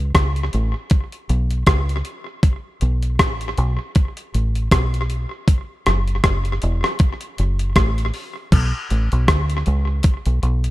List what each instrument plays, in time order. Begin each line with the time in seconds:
Already playing: fingered electric bass C#2
0.15 fingered electric bass C#2, kick, cross-stick, closed hi-hat
0.36 closed hi-hat
0.53 fingered electric bass A1, closed hi-hat
0.90 kick, closed hi-hat
1.12 closed hi-hat
1.29 fingered electric bass B1, closed hi-hat
1.51 closed hi-hat
1.67 fingered electric bass C#2, kick, cross-stick, closed hi-hat
1.89 closed hi-hat
2.05 closed hi-hat
2.43 kick, closed hi-hat
2.81 fingered electric bass B1, closed hi-hat
3.03 closed hi-hat
3.19 fingered electric bass A1, kick, cross-stick, closed hi-hat
3.41 closed hi-hat
3.58 fingered electric bass B1, closed hi-hat
3.95 kick, closed hi-hat
4.17 closed hi-hat
4.34 fingered electric bass A1, closed hi-hat
4.55 closed hi-hat
4.71 fingered electric bass B1, kick, cross-stick, closed hi-hat
4.94 closed hi-hat
5.10 closed hi-hat
5.48 kick, closed hi-hat
5.86 fingered electric bass F#1, cross-stick, closed hi-hat
6.08 closed hi-hat
6.24 fingered electric bass F#1, kick, cross-stick, closed hi-hat
6.45 closed hi-hat
6.62 fingered electric bass E1, closed hi-hat
6.84 cross-stick
6.99 kick, closed hi-hat
7.21 closed hi-hat
7.38 fingered electric bass F#1, closed hi-hat
7.59 closed hi-hat
7.76 fingered electric bass A1, kick, cross-stick, closed hi-hat
7.98 closed hi-hat
8.14 open hi-hat
8.52 fingered electric bass B1, kick, closed hi-hat, crash
8.90 fingered electric bass A1, closed hi-hat
9.12 fingered electric bass B1, closed hi-hat
9.28 fingered electric bass D2, kick, cross-stick, closed hi-hat
9.50 closed hi-hat
9.66 fingered electric bass C#2, closed hi-hat
10.03 kick, closed hi-hat
10.26 fingered electric bass B1, closed hi-hat
10.43 fingered electric bass B1, closed hi-hat
10.64 closed hi-hat